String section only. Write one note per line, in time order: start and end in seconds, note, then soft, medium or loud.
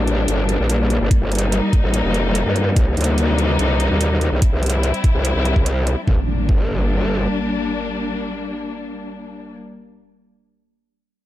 0.00 6.03 G3 medium
0.00 4.38 A#3 medium
0.00 1.09 D4 medium
1.11 2.75 D#4 medium
2.77 4.40 C3 medium
2.77 4.40 D4 medium
2.77 4.40 D#4 medium
4.42 6.06 C4 medium
4.42 6.06 E4 medium
6.08 9.56 G3 medium
6.08 9.56 A#3 medium
6.08 9.56 D4 medium